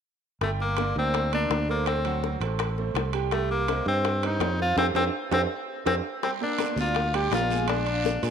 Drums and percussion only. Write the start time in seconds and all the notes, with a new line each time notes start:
0.41 high bongo, high timbale
0.60 high bongo
0.77 high bongo, high timbale
1.14 high bongo, high timbale
1.33 high bongo, high timbale
1.51 high bongo, low bongo, high timbale
1.69 high bongo
1.86 high bongo, high timbale
2.05 high timbale
2.24 high bongo
2.41 high bongo, high timbale
2.59 high bongo, high timbale
2.78 high bongo
2.95 high bongo, low bongo, high timbale
3.13 high bongo, high timbale
3.31 high bongo, high timbale
3.51 high bongo
3.68 high bongo, high timbale
4.05 high bongo, high timbale
4.23 high bongo, high timbale
4.40 high bongo, low bongo, high timbale, low timbale
4.60 high bongo
4.78 high bongo, high timbale
4.95 high bongo, high timbale
5.31 high bongo, high timbale
5.86 high bongo, high timbale
6.22 high bongo, high conga, high timbale, long guiro
6.41 high bongo, high conga
6.58 high bongo, high conga, high timbale, short guiro
6.77 high conga, short guiro
6.95 high bongo, high conga, high timbale, long guiro
7.14 high bongo, high conga, high timbale
7.32 high bongo, low bongo, high conga, high timbale, low timbale, short guiro
7.50 high bongo, high conga, short guiro
7.68 high bongo, high conga, high timbale, long guiro
7.87 high timbale
8.04 high bongo, high conga, short guiro
8.23 high bongo, high conga, high timbale, short guiro